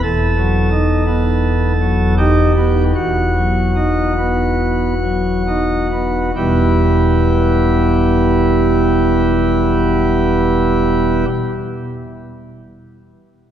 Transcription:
<<
  \new Staff \with { instrumentName = "Pipe organ" } { \time 4/4 \key e \minor \tempo 4 = 34 a'4. g'8 fis'2 | <e, b, g b e' g'>1 | }
  \new Staff \with { instrumentName = "Pipe organ" } { \clef bass \time 4/4 \key e \minor << { e,16 fis16 dis'16 b8 fis16 dis'16 b16 e,16 fis16 dis'16 b8 fis16 dis'16 b16 | r1 | } \\ { e,,2 e,,2 | e,,1 | } >> }
>>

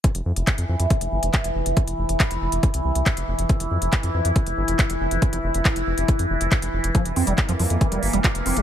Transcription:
<<
  \new Staff \with { instrumentName = "Synth drone" } { \time 4/4 \key c \phrygian \tempo 4 = 139 <e e'>1~ | <e e'>1~ | <e e'>1~ | <e e'>1 |
bes1 | }
  \new Staff \with { instrumentName = "Acid bass" } { \clef bass \time 4/4 \key c \phrygian r1 | r1 | r1 | r1 |
f16 r16 c'16 g16 r16 f16 f16 r16 e16 g16 r16 g16 f'16 r16 c'16 f16 | }
  \new Staff \with { instrumentName = "Analog synth bass" } { \clef bass \time 4/4 \key c \phrygian r16 f,,16 f,16 f,,16 r16 f,16 f,16 f,16 r16 f,,16 g,,16 f,,16 r16 f,,16 f,,16 f,,16 | r16 f,,16 f,,16 f,,16 r16 f,,16 f,,16 f,,16 r16 c,16 c,16 c,16 r16 f,,16 f,,16 f,,16 | r16 f,,16 f,16 f,,16 r16 f,16 f,16 f,16 r16 f,,16 g,,16 f,,16 r16 f,,16 f,,16 f,,16 | r16 f,,16 f,,16 f,,16 r16 f,,16 f,,16 f,,16 r16 f,16 f,,16 f,,16 r16 f,,16 f,,16 f,,16 |
r16 f,,16 f,16 f,,16 r16 f,16 f,16 f,16 r16 f,,16 g,,16 f,,16 r16 f,,16 f,,16 f,,16 | }
  \new DrumStaff \with { instrumentName = "Drums" } \drummode { \time 4/4 <hh bd>16 hh8 hh16 <hc hh bd>16 hh8 hh16 <hh bd>16 hh8 hh16 <hc hh bd>16 hh8 hh16 | <hh bd>16 hh8 hh16 <hc hh bd>16 hh8 hh16 <hh bd>16 hh8 hh16 <hc hh bd>16 hh8 hh16 | <hh bd>16 hh8 hh16 <hc hh bd>16 hh8 hh16 <hh bd>16 hh8 hh16 <hc hh bd>16 hh8 hh16 | <hh bd>16 hh8 hh16 <hc hh bd>16 hh8 hh16 <hh bd>16 hh8 hh16 <hc hh bd>16 hh8 hh16 |
<hh bd>16 hh16 hho16 hh16 <hc hh bd>16 hh16 hho16 hh16 <hh bd>16 hh16 hho16 hh16 <hc hh bd>16 hh16 hho16 hh16 | }
>>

